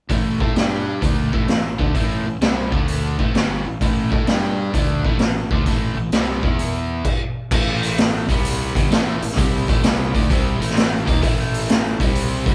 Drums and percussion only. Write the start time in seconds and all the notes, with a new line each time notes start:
0.10 kick, open hi-hat
0.40 kick
0.56 snare, open hi-hat
1.02 kick, open hi-hat
1.33 kick
1.48 snare, open hi-hat
1.79 kick
1.95 kick, open hi-hat
2.41 snare, open hi-hat
2.72 kick
2.88 open hi-hat
3.19 kick
3.35 snare, open hi-hat
3.81 kick, open hi-hat
4.12 kick
4.27 snare, open hi-hat
4.74 kick, open hi-hat
5.05 kick
5.19 snare, open hi-hat
5.51 kick
5.66 kick, open hi-hat
6.12 snare, open hi-hat
6.43 kick
6.59 open hi-hat
7.05 kick, crash
7.51 kick, crash
7.83 open hi-hat
7.98 snare, open hi-hat
8.29 kick, open hi-hat
8.45 open hi-hat
8.75 kick, open hi-hat
8.91 snare, open hi-hat
9.22 open hi-hat
9.31 snare
9.37 kick, open hi-hat
9.68 kick, open hi-hat
9.83 snare, open hi-hat
10.15 kick, open hi-hat
10.30 kick, open hi-hat
10.62 open hi-hat
10.70 snare
10.77 snare, open hi-hat
11.08 kick, open hi-hat
11.23 kick, open hi-hat
11.54 open hi-hat
11.69 snare, open hi-hat
12.00 kick, open hi-hat
12.15 open hi-hat
12.46 kick, open hi-hat